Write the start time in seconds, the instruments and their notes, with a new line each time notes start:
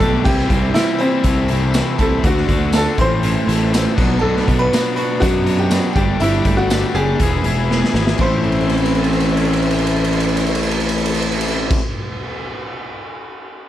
Already playing: overdriven electric guitar G3, clean electric guitar G3 A3 G4, string machine A4 G5 D6
0.00 picked electric bass B1, overdriven electric guitar D4 G4, upright piano A4, synth bell A5, kick, closed hi-hat
0.04 overdriven electric guitar A3
0.24 picked electric bass C2, overdriven electric guitar C3 E3 G3 C4, upright piano G4, string machine C5 E6, synth bell G5, kick, crash
0.28 overdriven electric guitar E4
0.39 snare
0.50 picked electric bass C2, overdriven electric guitar G3 C4 E4, kick, closed hi-hat
0.74 overdriven electric guitar E3 G3, upright piano E4, synth bell E5, snare, closed hi-hat, tambourine
0.79 overdriven electric guitar C4 E4
0.98 upright piano C4, overdriven electric guitar E4, synth bell C5, closed hi-hat
1.02 overdriven electric guitar G3 C4
1.24 picked electric bass C2, overdriven electric guitar C3 E3 A3 C4, string machine A5 E6, kick, closed hi-hat
1.28 overdriven electric guitar E4
1.48 clean electric guitar C3, overdriven electric guitar C4 E4, closed hi-hat
1.53 overdriven electric guitar A3
1.74 overdriven electric guitar C3 E3 A3 C4 E4, snare, closed hi-hat, tambourine
1.98 picked electric bass C2, overdriven electric guitar A3 C4 E4, upright piano A4, synth bell A5, kick, closed hi-hat
2.24 picked electric bass D2, overdriven electric guitar D3 A3 D4 F#4, upright piano F#4, string machine D5 F#5 E6, synth bell F#5, kick, closed hi-hat
2.37 snare
2.48 picked electric bass D2, overdriven electric guitar A3 D4 F#4, kick, closed hi-hat
2.73 overdriven electric guitar D3 A3 D4 F#4, synth bell A5, snare, closed hi-hat, tambourine
2.77 upright piano A4
2.97 picked electric bass A1, overdriven electric guitar A2 E3 A3 C4 E4, string machine C5 A5, synth bell C6, kick, closed hi-hat
3.01 upright piano C5
3.23 overdriven electric guitar A2 E3 A3 C4 E4, closed hi-hat
3.47 picked electric bass A1, clean electric guitar E3, overdriven electric guitar A3 C4 E4, closed hi-hat
3.72 overdriven electric guitar A2 E3 A3 C4 E4, snare, closed hi-hat, tambourine
3.95 picked electric bass B1, overdriven electric guitar B2 F#3 B3 D4 F#4, string machine B4 D5 D6, kick, crash
4.19 picked electric bass B1, overdriven electric guitar B2 F#3 B3, upright piano A4, synth bell A5
4.23 overdriven electric guitar D4 F#4
4.37 snare
4.46 picked electric bass B1, overdriven electric guitar B3 D4 F#4, kick, closed hi-hat
4.59 upright piano B4, synth bell B5
4.72 overdriven electric guitar F#3 B3 D4 F#4, snare, closed hi-hat, tambourine
4.96 overdriven electric guitar B3 D4 F#4, upright piano B4, synth bell B5, closed hi-hat
5.20 picked electric bass F#2, overdriven electric guitar B2 F#3 B3 D4 F#4, upright piano F#4, synth bell F#5, kick, closed hi-hat
5.46 clean electric guitar F#3, overdriven electric guitar B3 D4 F#4, closed hi-hat
5.59 upright piano G4, synth bell G5
5.71 overdriven electric guitar B2 F#3 B3 D4 F#4, snare, closed hi-hat, tambourine
5.93 picked electric bass G1, upright piano G4, overdriven electric guitar G4, string machine A4 A5 D6, synth bell G5, kick, closed hi-hat
5.97 overdriven electric guitar G3 A3 D4
6.20 picked electric bass G1, overdriven electric guitar G3 A3 D4 G4, upright piano E4, synth bell E5, closed hi-hat
6.45 picked electric bass G1, overdriven electric guitar A3 D4 G4, kick, closed hi-hat
6.57 upright piano F#4, synth bell F#5
6.70 overdriven electric guitar G3 A3 D4, snare, closed hi-hat, tambourine
6.74 overdriven electric guitar G4
6.94 picked electric bass F#1, overdriven electric guitar D4 G4, upright piano G#4, synth bell G#5, closed hi-hat
6.99 overdriven electric guitar A3
7.19 picked electric bass E1, overdriven electric guitar E3 B3 E4, string machine B4 G#5 E6, kick, closed hi-hat
7.23 overdriven electric guitar G#4
7.44 picked electric bass E1, clean electric guitar E3, overdriven electric guitar B3 E4 G#4, closed hi-hat
7.71 overdriven electric guitar E3 B3 E4 G#4, snare
7.84 snare
7.94 picked electric bass G#1, overdriven electric guitar E4 G#4, snare
7.99 overdriven electric guitar B3
8.07 snare
8.18 picked electric bass A1, overdriven electric guitar A2 E3 A3, string machine C4 A4 E5, upright piano C5, synth bell C6, kick, crash
8.23 overdriven electric guitar C4 E4
8.44 crash
8.52 ride
8.60 crash
8.69 ride
8.77 crash
8.85 ride
8.95 crash
9.04 ride
9.13 crash
9.20 ride
9.29 crash
9.37 ride
9.45 crash
9.53 ride
9.62 crash
9.71 ride
9.78 crash
9.87 ride
9.96 crash
10.04 ride
10.13 crash
10.20 ride
10.29 crash
10.37 ride
10.46 crash
10.55 ride
10.63 crash
10.71 ride
10.80 crash
10.89 ride
10.98 crash
11.05 ride
11.14 crash
11.22 ride
11.32 crash
11.41 ride
11.48 crash
11.71 kick, crash